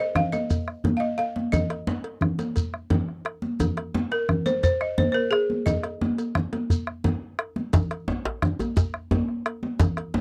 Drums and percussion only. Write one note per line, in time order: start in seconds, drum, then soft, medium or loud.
0.15 bombo rim loud
0.15 high conga soft
0.15 djembe bass medium
0.15 low conga medium
0.32 cowbell soft
0.32 djembe slap medium
0.32 high conga medium
0.32 shekere soft
0.50 bombo low loud
0.50 cowbell soft
0.50 shekere medium
0.67 bombo rim medium
0.67 djembe slap soft
0.84 cowbell soft
0.84 djembe tone medium
0.84 high conga medium
0.84 djembe bass medium
0.84 low conga medium
1.02 bombo rim soft
1.19 cowbell soft
1.36 djembe slap medium
1.36 high conga medium
1.53 bombo low medium
1.53 cowbell medium
1.53 low conga medium
1.53 djembe bass medium
1.53 shekere medium
1.70 bombo rim medium
1.70 cowbell soft
1.87 bombo rim soft
1.87 djembe slap medium
1.87 djembe tone medium
1.87 high conga medium
2.04 cowbell soft
2.21 bombo rim medium
2.21 high conga soft
2.21 low conga medium
2.21 djembe bass medium
2.39 cowbell soft
2.39 djembe slap medium
2.39 high conga medium
2.39 shekere soft
2.56 bombo low medium
2.56 cowbell soft
2.56 shekere medium
2.74 bombo rim medium
2.74 djembe slap soft
2.90 cowbell soft
2.90 djembe slap medium
2.90 high conga medium
2.90 djembe tone medium
2.90 low conga medium
2.90 djembe bass medium
3.08 bombo rim soft
3.25 bombo rim medium
3.25 cowbell soft
3.42 djembe slap medium
3.42 high conga medium
3.60 bombo low medium
3.60 cowbell medium
3.60 low conga medium
3.60 djembe bass medium
3.60 shekere medium
3.77 bombo rim medium
3.77 cowbell soft
3.94 bombo rim soft
3.94 djembe slap medium
3.94 djembe tone medium
3.94 high conga medium
4.12 cowbell soft
4.29 bombo rim medium
4.29 high conga soft
4.29 low conga medium
4.29 djembe bass medium
4.46 cowbell soft
4.46 djembe slap medium
4.46 high conga medium
4.46 shekere soft
4.63 bombo low loud
4.63 cowbell soft
4.63 shekere medium
4.81 bombo rim medium
4.81 djembe slap soft
4.98 cowbell soft
4.98 high conga medium
4.98 djembe tone medium
4.98 low conga medium
4.98 djembe bass medium
5.16 bombo rim soft
5.32 bombo rim medium
5.32 cowbell soft
5.50 djembe slap soft
5.50 high conga medium
5.66 bombo low medium
5.66 cowbell medium
5.66 low conga medium
5.66 djembe bass medium
5.66 shekere medium
5.83 bombo rim medium
5.83 cowbell soft
6.01 djembe slap medium
6.01 djembe tone medium
6.01 high conga medium
6.18 cowbell soft
6.18 shekere soft
6.35 bombo rim loud
6.35 low conga medium
6.35 djembe bass medium
6.53 bombo rim soft
6.53 cowbell soft
6.53 djembe slap medium
6.53 high conga medium
6.70 bombo low loud
6.70 cowbell soft
6.70 shekere medium
6.87 bombo rim medium
6.87 djembe slap soft
7.04 cowbell soft
7.04 djembe slap medium
7.04 high conga medium
7.04 djembe tone medium
7.04 low conga medium
7.04 djembe bass medium
7.39 bombo rim loud
7.39 cowbell soft
7.39 djembe slap soft
7.56 bombo rim soft
7.56 djembe slap medium
7.56 high conga medium
7.73 bombo low loud
7.73 cowbell medium
7.73 djembe slap loud
7.73 low conga medium
7.73 djembe bass medium
7.73 shekere medium
7.91 bombo rim medium
7.91 cowbell soft
8.08 bombo rim soft
8.08 djembe slap medium
8.08 djembe tone medium
8.08 high conga medium
8.08 djembe tone medium
8.25 cowbell medium
8.25 djembe slap loud
8.42 bombo rim loud
8.42 high conga soft
8.42 djembe bass medium
8.42 low conga medium
8.60 cowbell soft
8.60 djembe slap medium
8.60 djembe tone medium
8.60 high conga medium
8.60 shekere soft
8.77 bombo low loud
8.77 cowbell soft
8.77 djembe slap loud
8.77 shekere medium
8.94 bombo rim medium
8.94 djembe slap soft
9.11 cowbell soft
9.11 djembe slap medium
9.11 djembe tone medium
9.11 high conga medium
9.11 djembe bass medium
9.28 bombo rim soft
9.46 bombo rim loud
9.46 cowbell soft
9.63 djembe slap medium
9.63 high conga medium
9.80 bombo low loud
9.80 cowbell medium
9.80 djembe slap loud
9.80 djembe bass medium
9.80 low conga medium
9.80 shekere medium
9.97 bombo rim medium
9.97 cowbell soft
10.14 bombo rim soft
10.14 djembe slap medium
10.14 high conga medium
10.14 djembe tone medium